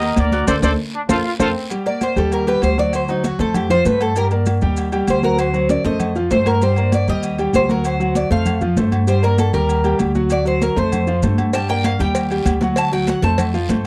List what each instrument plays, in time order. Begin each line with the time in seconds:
Already playing: upright bass D#2, trumpet section A#4 D#5
0.02 grand piano A#3 A#4 A#5, high conga, low agogo, maracas
0.16 upright bass D2, trumpet section A#4 D5, cowbell, high conga, low agogo, short guiro, maracas
0.32 grand piano F#4 F#5 F#6, cowbell, high conga, short guiro, maracas
0.47 upright bass D2, trumpet section A4 C5 D5, grand piano A4 C5 D5, cowbell, high conga, high timbale, long guiro, maracas
0.62 upright bass D2, trumpet section A4 C5 D5, grand piano A4 C5 D5, cowbell, high conga, high timbale, long guiro, maracas
0.94 trombone section D4
1.09 upright bass F2, trombone section F4, trumpet section F4 A4 C5, grand piano A4 C5 F5, cowbell, high conga, high timbale, long guiro, maracas
1.24 trombone section F4
1.38 upright bass F2, trombone section C4, trumpet section F4 A4 C5, grand piano A4 C5 F5, cowbell, high conga, high timbale, long guiro, maracas
1.70 grand piano G3 G4 G5, high conga, low agogo, maracas
1.86 grand piano A#3 A#4 D5, cuban tres D5, high conga, low agogo, maracas
2.01 cuban tres C5, high conga, low agogo, maracas
2.16 upright bass D#2, grand piano G3 G4 G5, cuban tres A4, high conga, maracas
2.32 cuban tres A#4, high conga, low agogo, maracas
2.47 grand piano G3 G4 G5, cuban tres B4, high conga, low agogo, maracas
2.62 upright bass D2, cuban tres C5, high conga, low timbale, low agogo, maracas
2.78 grand piano F#3 F#4 F#5, cuban tres D5, high conga, maracas
2.93 cuban tres C5, high conga, low agogo, maracas
3.08 grand piano F#3 F#4 F#5, cuban tres D#4, high conga, maracas
3.24 cuban tres F#4, high conga, low agogo, maracas
3.39 upright bass F2, grand piano A3 A4 C5, cuban tres A4, high conga, maracas
3.54 cuban tres G4, high conga, low conga, low agogo, maracas
3.70 grand piano F3 F4 F5, cuban tres C5, high conga, low conga, maracas
3.85 upright bass G2, grand piano A3 A4 C5, cuban tres B4, high conga, low agogo, maracas
4.00 cuban tres A4, low agogo, maracas
4.16 grand piano G3 G4 G5, cuban tres A#4, high conga, low agogo, maracas
4.31 grand piano A#3 A#4 D5, high conga, low agogo, maracas
4.46 high conga, low agogo, maracas
4.61 upright bass D#2, grand piano G3 G4 G5, high conga, maracas
4.77 high conga, low agogo, maracas
4.92 grand piano G3 G4 G5, high conga, low agogo, maracas
5.07 upright bass D2, cuban tres C5, high conga, low agogo, maracas
5.23 grand piano F#3 F#4 F#5, cuban tres A#4, high conga, maracas
5.38 cuban tres C5, high conga, low agogo, maracas
5.53 grand piano F#3 F#4 F#5, high conga, maracas
5.69 cuban tres D5, high conga, high timbale, low agogo, maracas
5.84 upright bass F2, grand piano A3 A4 C5, cuban tres D#5, high conga, high timbale, maracas
6.00 high conga, low conga, low agogo, maracas
6.16 grand piano F3 F4 F5, high conga, maracas
6.31 upright bass G2, grand piano A3 A4 C5, cuban tres C5, high conga, low timbale, low agogo, maracas
6.46 cuban tres A#4, high conga, low timbale, low agogo, maracas
6.61 grand piano G3 G4 G5, cuban tres C5, high conga, low agogo, maracas
6.76 grand piano A#3 A#4 D5, high conga, low agogo, maracas
6.92 cuban tres D5, high conga, low agogo, maracas
7.07 upright bass D#2, grand piano G3 G4 G5, cuban tres D#5, high conga, maracas
7.23 high conga, low agogo, maracas
7.38 grand piano G3 G4 G5, high conga, low agogo, maracas
7.53 upright bass D2, cuban tres C5, high conga, low timbale, low agogo, maracas
7.69 grand piano F#3 F#4 F#5, cuban tres A#4, high conga, maracas
7.84 cuban tres C5, high conga, low agogo, maracas
8.00 grand piano F#3 F#4 F#5, high conga, maracas
8.15 cuban tres D5, high conga, low agogo, maracas
8.30 upright bass F2, grand piano A3 A4 C5, cuban tres F5, high conga, maracas
8.46 high conga, low conga, low agogo, maracas
8.61 grand piano F3 F4 F5, high conga, low conga, maracas
8.77 upright bass G2, grand piano A3 A4 C5, high conga, low timbale, low agogo, maracas
8.92 high conga, low agogo, maracas
9.07 grand piano G3 G4 G5, cuban tres C5, low agogo, maracas
9.22 grand piano A#3 A#4 D5, cuban tres A#4, high conga, low agogo, maracas
9.38 cuban tres A4, high conga, low agogo, maracas
9.53 upright bass D#2, grand piano G3 G4 G5, cuban tres A#4, high conga, maracas
9.69 high conga, low agogo, maracas
9.84 grand piano G3 G4 G5, high conga, low agogo, maracas
9.99 upright bass D2, high conga, low agogo, maracas
10.15 grand piano F#3 F#4 F#5, high conga, maracas
10.30 cuban tres D5, high conga, low agogo, maracas
10.45 grand piano F#3 F#4 F#5, cuban tres C5, high conga, maracas
10.62 cuban tres A#4, high conga, low agogo, maracas
10.76 upright bass F2, grand piano A3 A4 C5, cuban tres C5, high conga, maracas
10.92 high conga, low conga, low agogo, maracas
11.07 grand piano F3 F4 F5, maracas
11.22 upright bass G2, grand piano A3 A4 C5, high conga, low agogo, maracas
11.38 high conga, low agogo, maracas
11.53 grand piano G3 G4 G5, cuban tres A5, cowbell, high conga, low agogo, long guiro, maracas
11.69 grand piano A#3 A#4 D5, cuban tres G5, high conga, low agogo, maracas
11.84 cuban tres F5, cowbell, high conga, low agogo, short guiro, maracas
11.99 upright bass D#2, grand piano G3 G4 G5, cuban tres G5, high conga, short guiro, maracas
12.15 cowbell, high conga, low agogo, long guiro, maracas
12.31 grand piano G3 G4 G5, high conga, low agogo, maracas
12.45 upright bass D2, cowbell, high conga, low agogo, short guiro, maracas
12.61 grand piano F#3 F#4 F#5, cowbell, high conga, short guiro, maracas
12.76 cuban tres A5, cowbell, high conga, low agogo, long guiro, maracas
12.92 grand piano F#3 F#4 F#5, cuban tres G5, high conga, maracas
13.07 cuban tres F#5, cowbell, high conga, low agogo, short guiro, maracas
13.22 upright bass F2, grand piano A3 A4 C5, cuban tres A5, cowbell, high conga, short guiro, maracas
13.38 cowbell, high conga, low conga, low agogo, long guiro, maracas
13.54 grand piano F3 F4 F5, high conga, maracas
13.69 upright bass G2, grand piano A3 A4 C5, cowbell, high conga, low agogo, short guiro, maracas